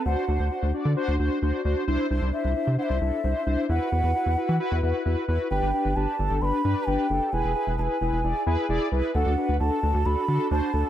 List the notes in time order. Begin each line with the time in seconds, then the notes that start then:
0.05 D2 D4 F#4 C5 F#5
0.28 D2 D4 F#4 C5
0.40 D2
0.51 D4 F#4 C5
0.62 D2
0.74 D4 F#4 D5
0.85 D3
0.96 D4 F#4 C5
1.08 D2
1.19 D2 D4 F#4 C5
1.42 D2 D4 F#4 C5
1.65 D2 D4 F#4 C5
1.87 C2 D4 E4 C5
2.10 C2 D4 E4 C5
2.22 C2
2.33 D4 E4 C5 E5
2.44 C2
2.56 D4 E4 C5
2.67 C3
2.78 D4 E4 C5 F#5
2.83 E5
2.90 C2
3.01 C2 D4 E4 A4
3.24 C2 D4 E4 C5
3.46 C2 D4 E4 C5
3.69 E2 E4 F#4 B4 F#5
3.92 E2 E4 F#4 B4
4.03 E2
4.14 E4 F#4 B4
4.26 E2
4.37 E4 F#4 B4
4.49 E3
4.60 E4 F#4 B4
4.71 E2
4.83 E2 E4 F#4 B4
5.05 E2 E4 F#4 B4
5.28 E2 E4 F#4 B4
5.51 G1 D4 G4 B4 G5
5.62 G1
5.74 D4 G4 B4
5.85 G1
5.96 G1 D4 G4 B4 A5
6.19 G1 D4 G4 A4
6.30 G1
6.42 G1 D4 G4 B4 B5 C6
6.64 G2 D4 G4 B4
6.87 G1 D4 G4 B4 G5
7.10 F#1 D4 G4 A4
7.33 E1 E4 G#4 B4 G#5
7.44 E1
7.55 E4 G#4 B4
7.67 E1
7.78 E1 E4 G#4 B4 G#5 A5
8.01 E1 E4 G#4 B4
8.12 E1
8.24 E1 E4 G#4 D5
8.46 E2 E4 G#4 B4
8.69 E1 E4 G#4 D5
8.92 C2 E4 G#4 B4
9.15 D2 D4 F#4 A4 F#5
9.26 D2
9.37 D4 F#4 B4
9.49 D2
9.60 D2 D4 F#4 A4 A5
9.83 D2 D4 F#4 A4
9.94 D2
10.05 D2 D4 F#4 A4 B5
10.28 D3 D4 F#4 A4
10.51 D2 D4 F#4 C5 A5
10.73 D2 D4 F#4 A4